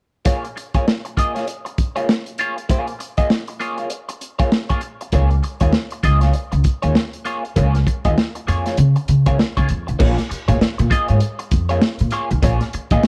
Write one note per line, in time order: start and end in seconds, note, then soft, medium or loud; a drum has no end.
0.25 0.47 A#3 medium
0.25 0.44 F4 medium
0.25 0.44 G#4 medium
0.25 0.43 C#5 medium
0.25 kick loud
0.25 closed hi-hat medium
0.44 muted clean electric guitar stroke soft
0.44 closed hi-hat soft
0.56 muted clean electric guitar stroke soft
0.56 closed hi-hat medium
0.74 0.85 A#3 soft
0.74 0.86 F4 soft
0.74 0.86 G#4 soft
0.74 0.87 C#5 medium
0.74 kick medium
0.74 closed hi-hat soft
0.86 muted clean electric guitar stroke soft
0.86 snare loud
1.05 muted clean electric guitar stroke soft
1.05 closed hi-hat medium
1.17 1.35 A#3 medium
1.17 1.35 F4 medium
1.17 1.34 G#4 medium
1.17 1.34 D#5 medium
1.17 kick medium
1.17 closed hi-hat medium
1.35 1.46 A#3 soft
1.35 1.46 F4 soft
1.35 1.47 G#4 soft
1.35 1.47 C#5 medium
1.35 snare soft
1.35 closed hi-hat soft
1.47 muted clean electric guitar stroke soft
1.47 closed hi-hat medium
1.65 muted clean electric guitar stroke soft
1.65 closed hi-hat soft
1.78 kick medium
1.78 closed hi-hat medium
1.96 2.07 A#3 medium
1.96 2.08 F4 medium
1.96 2.09 G#4 medium
1.96 2.09 C#5 medium
1.96 closed hi-hat soft
2.09 muted clean electric guitar stroke soft
2.09 snare loud
2.26 closed hi-hat medium
2.38 2.57 A#3 medium
2.38 2.57 F4 medium
2.38 2.57 G#4 medium
2.38 2.56 C#5 medium
2.38 closed hi-hat medium
2.57 muted clean electric guitar stroke soft
2.57 closed hi-hat soft
2.69 2.91 A#3 medium
2.69 2.88 F4 medium
2.69 2.87 G#4 medium
2.69 2.87 C#5 medium
2.69 kick loud
2.69 closed hi-hat medium
2.87 muted clean electric guitar stroke soft
2.87 closed hi-hat soft
2.99 muted clean electric guitar stroke soft
2.99 closed hi-hat medium
3.17 3.28 A#3 soft
3.17 3.29 F4 soft
3.17 3.29 G#4 medium
3.17 3.30 D#5 medium
3.17 kick medium
3.17 closed hi-hat soft
3.30 muted clean electric guitar stroke soft
3.30 snare loud
3.48 muted clean electric guitar stroke soft
3.48 closed hi-hat medium
3.60 3.78 A#3 medium
3.60 3.78 F4 medium
3.60 3.78 G#4 medium
3.60 3.77 C#5 medium
3.60 closed hi-hat medium
3.78 3.89 A#3 soft
3.78 3.89 F4 medium
3.78 3.90 G#4 medium
3.78 3.90 C#5 medium
3.78 closed hi-hat soft
3.90 muted clean electric guitar stroke soft
3.90 closed hi-hat medium
4.09 muted clean electric guitar stroke medium
4.09 closed hi-hat medium
4.21 closed hi-hat medium
4.39 4.50 A#3 medium
4.39 4.51 F4 medium
4.39 4.51 G#4 medium
4.39 4.52 C#5 medium
4.39 kick medium
4.39 closed hi-hat soft
4.51 muted clean electric guitar stroke soft
4.51 snare loud
4.69 4.81 A#3 medium
4.69 4.81 F4 medium
4.69 4.82 G#4 medium
4.69 4.82 C#5 medium
4.69 kick medium
4.69 closed hi-hat soft
4.81 closed hi-hat medium
5.01 muted clean electric guitar stroke soft
5.01 closed hi-hat soft
5.12 5.39 C#2 medium
5.12 5.34 A#3 medium
5.12 5.31 F4 medium
5.12 5.30 G#4 loud
5.12 5.29 C#5 loud
5.12 kick loud
5.12 closed hi-hat medium
5.30 muted clean electric guitar stroke soft
5.30 closed hi-hat soft
5.43 muted clean electric guitar stroke soft
5.43 closed hi-hat medium
5.60 5.72 D#2 medium
5.60 5.72 A#3 soft
5.60 5.72 F4 medium
5.60 5.73 G#4 medium
5.60 5.73 C#5 medium
5.60 kick medium
5.60 closed hi-hat medium
5.73 muted clean electric guitar stroke soft
5.73 snare loud
5.90 muted clean electric guitar stroke soft
5.90 closed hi-hat medium
6.03 6.30 C#2 medium
6.03 6.22 A#3 medium
6.03 6.21 F4 medium
6.03 6.21 G#4 medium
6.03 6.21 D#5 medium
6.03 kick medium
6.03 closed hi-hat medium
6.21 6.32 A#3 soft
6.21 6.33 F4 soft
6.21 6.33 G#4 medium
6.21 6.34 C#5 medium
6.21 snare soft
6.21 closed hi-hat soft
6.33 muted clean electric guitar stroke soft
6.33 closed hi-hat medium
6.52 6.63 C#2 medium
6.52 muted clean electric guitar stroke soft
6.52 closed hi-hat soft
6.64 kick medium
6.64 closed hi-hat medium
6.82 6.94 D#2 medium
6.82 6.94 A#3 medium
6.82 6.94 F4 medium
6.82 6.95 G#4 medium
6.82 6.95 C#5 medium
6.82 closed hi-hat soft
6.95 muted clean electric guitar stroke soft
6.95 snare medium
7.13 closed hi-hat medium
7.25 7.43 A#3 medium
7.25 7.44 F4 medium
7.25 7.44 G#4 medium
7.25 7.43 C#5 medium
7.25 closed hi-hat medium
7.44 muted clean electric guitar stroke soft
7.44 closed hi-hat soft
7.56 7.82 C#2 medium
7.56 7.77 A#3 medium
7.56 7.75 F4 medium
7.56 7.75 G#4 medium
7.56 7.74 C#5 medium
7.56 kick loud
7.56 closed hi-hat medium
7.75 muted clean electric guitar stroke soft
7.75 snare soft
7.75 closed hi-hat soft
7.87 muted clean electric guitar stroke soft
7.87 kick medium
7.87 closed hi-hat medium
8.05 8.15 D#2 medium
8.05 8.16 A#3 medium
8.05 8.16 F4 medium
8.05 8.17 G#4 medium
8.05 8.17 D#5 medium
8.05 kick medium
8.05 closed hi-hat soft
8.17 muted clean electric guitar stroke soft
8.17 snare medium
8.35 muted clean electric guitar stroke soft
8.35 closed hi-hat medium
8.47 8.74 F2 medium
8.47 8.65 A#3 medium
8.47 8.66 F4 medium
8.47 8.65 G#4 medium
8.47 8.64 C#5 medium
8.47 closed hi-hat medium
8.66 8.76 A#3 soft
8.66 8.77 F4 soft
8.66 8.77 G#4 medium
8.66 8.78 C#5 medium
8.66 snare soft
8.66 closed hi-hat soft
8.77 8.93 C#3 loud
8.77 muted clean electric guitar stroke soft
8.77 closed hi-hat medium
8.96 muted clean electric guitar stroke soft
8.96 closed hi-hat soft
9.08 9.24 C#3 medium
9.08 closed hi-hat medium
9.26 9.37 C#2 medium
9.26 9.37 A#3 medium
9.26 9.38 F4 medium
9.26 9.38 G#4 medium
9.26 9.39 C#5 medium
9.26 kick medium
9.26 closed hi-hat soft
9.38 muted clean electric guitar stroke soft
9.38 snare medium
9.57 9.68 C#2 medium
9.57 9.68 A#3 medium
9.57 9.68 F4 medium
9.57 9.69 G#4 medium
9.57 9.69 C#5 medium
9.57 kick medium
9.57 closed hi-hat soft
9.69 9.85 F2 medium
9.69 muted clean electric guitar stroke soft
9.69 closed hi-hat medium
9.87 9.99 B1 medium
9.87 muted clean electric guitar stroke soft
9.87 closed hi-hat soft
9.99 10.15 A#1 loud
9.99 10.21 A#3 loud
9.99 10.18 F4 medium
9.99 10.17 G#4 loud
9.99 10.16 C#5 medium
9.99 kick loud
9.99 crash medium
10.17 muted clean electric guitar stroke medium
10.17 snare soft
10.17 closed hi-hat soft
10.29 muted clean electric guitar stroke soft
10.29 muted upright bass stroke soft
10.29 closed hi-hat medium
10.48 10.59 A#2 medium
10.48 10.59 A#3 soft
10.48 10.59 F4 medium
10.48 10.60 G#4 medium
10.48 10.60 C#5 medium
10.48 kick loud
10.48 closed hi-hat medium
10.60 muted clean electric guitar stroke soft
10.60 muted upright bass stroke soft
10.60 snare medium
10.78 10.89 A#2 loud
10.78 muted clean electric guitar stroke soft
10.78 closed hi-hat medium
10.90 11.08 A#3 medium
10.90 11.09 F4 medium
10.90 11.08 G#4 medium
10.90 11.08 D#5 medium
10.90 kick medium
10.90 closed hi-hat medium
11.08 11.20 G#2 medium
11.08 11.20 A#3 soft
11.08 11.20 F4 soft
11.08 11.20 G#4 medium
11.08 11.21 C#5 medium
11.08 closed hi-hat soft
11.20 muted clean electric guitar stroke soft
11.20 closed hi-hat medium
11.39 muted clean electric guitar stroke medium
11.39 closed hi-hat medium
11.51 11.77 F2 medium
11.51 kick medium
11.51 closed hi-hat medium
11.69 11.81 A#3 medium
11.69 11.81 F4 medium
11.69 11.82 G#4 medium
11.69 11.82 C#5 medium
11.69 closed hi-hat soft
11.82 muted clean electric guitar stroke soft
11.82 snare loud
11.99 12.11 A#2 medium
11.99 closed hi-hat medium
12.11 12.30 A#3 medium
12.11 12.30 F4 medium
12.11 12.30 G#4 medium
12.11 12.29 C#5 medium
12.11 closed hi-hat medium
12.30 12.41 B1 medium
12.30 muted clean electric guitar stroke medium
12.30 closed hi-hat soft
12.42 12.58 A#1 loud
12.42 12.64 A#3 medium
12.42 12.62 F4 medium
12.42 12.61 G#4 loud
12.42 12.60 C#5 loud
12.42 kick loud
12.42 closed hi-hat medium
12.61 muted clean electric guitar stroke soft
12.61 snare soft
12.61 closed hi-hat soft
12.73 muted clean electric guitar stroke soft
12.73 muted upright bass stroke soft
12.73 closed hi-hat medium
12.90 13.01 A#2 medium
12.90 13.03 A#3 medium
12.90 13.03 F4 medium
12.90 13.04 G#4 medium
12.90 13.03 D#5 medium
12.90 kick loud
12.90 closed hi-hat medium
13.03 muted clean electric guitar stroke soft
13.03 snare loud